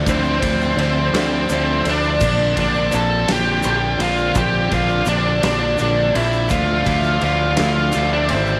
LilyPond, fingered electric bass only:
\new Staff \with { instrumentName = "Fingered electric bass" } { \clef bass \time 6/8 \key d \minor \tempo 4. = 56 d,8 d,8 d,8 d,8 d,8 d,8 | bes,,8 bes,,8 bes,,8 bes,,8 bes,,8 bes,,8 | bes,,8 bes,,8 bes,,8 bes,,8 bes,,8 bes,,8 | d,8 d,8 d,8 d,8 d,8 aes,,8 | }